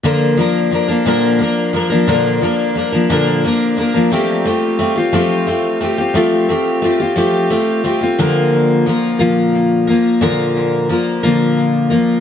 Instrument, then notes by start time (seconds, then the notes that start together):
steel-string acoustic guitar
0.03 A#2 D3 F3 A#3 D4 A#4
0.37 F3 A#3 D4 A#4
0.71 F3 A#3 D4 A#4
0.88 F3 A#3 D4 A#4
1.06 A#2 D3 F3 A#3 D4 A#4
1.39 F3 A#3 D4 A#4
1.73 F3 A#3 D4 A#4
1.90 F3 A#3 D4 A#4
2.07 A#2 D3 F3 A#3 D4 A#4
2.41 F3 A#3 D4 A#4
2.75 F3 A#3 D4 A#4
2.92 F3 A#3 D4 A#4
3.10 A#2 D3 F3 A#3 D4 A#4
3.44 F3 A#3 D4 A#4
3.77 F3 A#3 D4 A#4
3.94 F3 A#3 D4 A#4
4.11 F3 A3 C4 F4 G4
4.45 A3 C4 F4 G4
4.79 A3 C4 F4 G4
4.95 C4 F4 G4
5.13 F3 A3 C4 F4 G4
5.47 A3 C4 F4 G4
5.81 A3 C4 F4 G4
5.98 C4 F4 G4
6.14 F3 A3 C4 F4 G4
6.49 A3 C4 F4 G4
6.82 A3 C4 F4 G4
7.00 C4 F4 G4
7.16 F3 A3 C4 F4 G4
7.50 A3 C4 F4 G4
7.84 A3 C4 F4 G4
8.01 C4 F4 G4
8.19 A#2 D3 F3 A#3 F4 A#4
8.86 F3 A#3 F4 A#4
9.19 A#2 D3 F3 A#3 F4 A#4
9.87 F3 A#3 F4 A#4
10.21 A#2 D3 F3 A#3 F4 A#4
10.89 F3 A#3 F4 A#4
11.23 A#2 D3 F3 A#3 F4 A#4
11.90 F3 A#3 F4 A#4